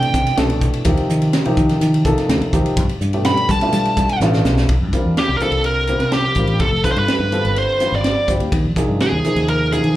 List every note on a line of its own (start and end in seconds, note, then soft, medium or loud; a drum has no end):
0.00 0.34 B2 medium
0.00 0.11 C3 loud
0.00 0.34 E3 medium
0.00 0.34 A3 medium
0.00 0.35 D4 medium
0.00 0.34 A4 medium
0.00 0.34 G5 medium
0.00 ride medium
0.14 0.25 C3 medium
0.14 kick medium
0.14 snare soft
0.14 hi-hat pedal medium
0.27 snare soft
0.27 ride medium
0.37 0.59 C2 medium
0.37 0.82 B2 medium
0.37 0.82 E3 medium
0.37 0.82 A3 medium
0.37 0.83 D4 medium
0.37 0.83 A4 loud
0.37 snare loud
0.37 hi-hat pedal medium
0.37 ride medium
0.50 ride medium
0.61 kick medium
0.61 hi-hat pedal medium
0.74 ride medium
0.85 0.96 D#2 loud
0.85 1.41 C3 medium
0.85 1.41 F3 medium
0.85 1.42 A#3 medium
0.85 1.41 D#4 medium
0.85 1.42 G4 medium
0.85 kick loud
0.85 hi-hat pedal medium
0.85 ride medium
0.97 ride medium
1.09 1.30 D#3 medium
1.09 hi-hat pedal medium
1.22 ride medium
1.33 snare loud
1.33 hi-hat pedal medium
1.33 ride medium
1.45 2.02 C3 medium
1.45 2.02 F3 medium
1.45 2.01 A#3 medium
1.45 2.02 D#4 medium
1.45 2.01 G4 loud
1.45 muted fingered electric bass stroke soft
1.45 ride medium
1.57 1.68 D#3 medium
1.57 kick medium
1.57 hi-hat pedal medium
1.69 muted fingered electric bass stroke soft
1.69 snare soft
1.69 ride medium
1.81 2.02 D#3 medium
1.81 hi-hat pedal medium
1.81 ride medium
1.94 ride medium
2.05 2.50 C3 medium
2.05 2.50 F3 medium
2.05 2.50 A#3 medium
2.05 2.50 D#4 medium
2.05 2.50 A4 loud
2.05 kick medium
2.05 hi-hat pedal medium
2.18 snare soft
2.18 ride medium
2.29 2.40 D2 medium
2.29 snare loud
2.29 hi-hat pedal medium
2.29 ride medium
2.42 muted fingered electric bass stroke soft
2.42 ride medium
2.53 2.64 D#2 medium
2.53 2.77 C3 medium
2.53 2.77 F3 medium
2.53 2.77 A#3 medium
2.53 2.78 D#4 medium
2.53 2.77 G4 medium
2.53 kick medium
2.53 hi-hat pedal medium
2.65 muted fingered electric bass stroke soft
2.65 ride medium
2.76 2.87 G2 medium
2.76 kick loud
2.76 hi-hat pedal medium
2.76 ride medium
2.89 muted fingered electric bass stroke soft
2.89 ride medium
3.01 3.33 G2 medium
3.01 hi-hat pedal medium
3.13 3.58 B2 medium
3.13 3.58 E3 medium
3.13 3.58 A3 medium
3.13 3.58 D4 medium
3.13 3.58 G4 medium
3.13 ride medium
3.25 3.49 B5 loud
3.25 snare loud
3.25 hi-hat pedal medium
3.25 ride medium
3.37 muted fingered electric bass stroke soft
3.37 ride medium
3.49 3.60 G3 medium
3.49 4.18 A5 medium
3.49 kick medium
3.49 hi-hat pedal medium
3.61 4.17 B2 medium
3.61 4.17 A3 medium
3.61 4.17 D4 medium
3.61 4.17 E4 medium
3.61 4.17 F4 medium
3.61 snare soft
3.61 ride medium
3.73 3.94 G3 medium
3.73 hi-hat pedal medium
3.73 ride medium
3.85 ride medium
3.97 4.08 G3 medium
3.97 kick medium
3.97 snare soft
3.97 hi-hat pedal medium
4.09 ride medium
4.20 4.42 A1 medium
4.20 4.66 B2 medium
4.20 4.66 A3 medium
4.20 4.66 D4 medium
4.20 4.66 E4 medium
4.20 4.66 F4 loud
4.20 snare medium
4.20 hi-hat pedal medium
4.33 snare medium
4.44 4.66 B1 medium
4.44 snare medium
4.44 hi-hat pedal medium
4.57 snare medium
4.69 4.82 C2 medium
4.69 kick medium
4.69 ride medium
4.81 4.91 G2 medium
4.93 5.38 D3 medium
4.93 5.38 G3 medium
4.93 5.38 C4 medium
4.93 5.38 F4 medium
4.93 5.38 A#4 medium
4.93 kick medium
4.93 hi-hat pedal medium
4.93 ride medium
5.05 5.15 E2 medium
5.17 5.36 G4 medium
5.17 snare loud
5.17 ride medium
5.29 5.39 C2 medium
5.36 5.42 A#4 medium
5.36 hi-hat pedal medium
5.36 ride medium
5.41 5.86 D3 medium
5.41 5.86 G3 medium
5.41 5.86 C4 medium
5.41 5.86 F4 medium
5.41 5.64 A4 medium
5.41 5.86 A#4 medium
5.51 5.94 C2 medium
5.51 ride medium
5.64 6.10 A#4 medium
5.64 ride medium
5.87 6.33 D3 medium
5.87 6.34 G3 medium
5.87 6.34 C4 medium
5.87 6.34 F4 medium
5.87 6.34 A#4 medium
5.87 hi-hat pedal medium
5.87 ride medium
6.00 6.21 C3 medium
6.00 snare soft
6.00 ride medium
6.12 6.62 G4 medium
6.12 snare loud
6.12 ride medium
6.35 6.61 A1 medium
6.35 6.61 D3 medium
6.35 6.61 G3 medium
6.35 6.61 C4 medium
6.35 6.61 F4 medium
6.35 6.61 A#4 medium
6.35 kick medium
6.35 hi-hat pedal medium
6.35 ride medium
6.47 ride medium
6.59 6.71 G1 loud
6.59 6.84 A4 medium
6.59 kick loud
6.59 ride medium
6.71 6.82 F1 medium
6.84 7.29 D3 medium
6.84 7.29 G3 medium
6.84 7.29 C4 medium
6.84 7.29 F4 medium
6.84 7.29 A4 medium
6.84 6.91 B4 medium
6.84 kick medium
6.84 hi-hat pedal medium
6.84 ride medium
6.92 6.99 C5 medium
6.96 7.07 G2 medium
6.96 7.58 B4 medium
6.96 ride medium
7.08 snare loud
7.08 ride medium
7.20 7.41 G2 medium
7.32 7.77 D3 medium
7.32 7.77 G3 medium
7.32 7.77 C4 medium
7.32 7.77 F4 medium
7.32 7.77 A4 medium
7.32 hi-hat pedal medium
7.32 ride medium
7.45 7.66 G1 medium
7.45 ride medium
7.56 7.95 C5 medium
7.56 ride medium
7.80 8.25 D3 medium
7.80 8.25 G3 medium
7.80 8.25 C4 medium
7.80 8.25 F4 medium
7.80 8.25 B4 medium
7.80 snare soft
7.80 hi-hat pedal medium
7.80 ride medium
7.92 8.13 G1 medium
7.92 8.28 D5 medium
7.92 snare soft
8.04 snare medium
8.04 ride medium
8.28 8.39 G1 medium
8.28 8.53 D3 medium
8.28 8.53 G3 medium
8.28 8.53 C4 medium
8.28 8.53 F4 medium
8.28 8.53 G4 medium
8.28 kick medium
8.28 hi-hat pedal medium
8.28 ride medium
8.40 8.51 D2 medium
8.40 ride medium
8.52 8.67 D#2 medium
8.52 kick loud
8.52 ride medium
8.65 8.75 A#1 medium
8.76 9.21 C3 medium
8.76 9.21 F3 medium
8.76 9.21 A#3 medium
8.76 9.21 D#4 medium
8.76 9.21 G#4 medium
8.76 kick medium
8.76 hi-hat pedal medium
8.76 ride medium
8.88 8.99 G2 medium
9.00 9.49 G#4 medium
9.00 snare medium
9.00 ride medium
9.12 9.23 D#2 medium
9.24 9.69 C3 medium
9.24 9.70 F3 medium
9.24 9.69 A#3 medium
9.24 9.70 D#4 medium
9.24 9.69 G#4 medium
9.24 muted fingered electric bass stroke soft
9.24 hi-hat pedal medium
9.24 ride medium
9.36 9.78 D#2 medium
9.36 snare soft
9.36 ride medium
9.48 9.73 A#4 medium
9.48 ride medium
9.72 9.96 C3 medium
9.72 9.96 F3 medium
9.72 9.96 A#3 medium
9.72 9.96 D#4 medium
9.72 9.96 G#4 medium
9.72 9.95 G#4 medium
9.72 snare soft
9.72 hi-hat pedal medium
9.72 ride medium
9.84 9.96 D#3 medium
9.84 ride medium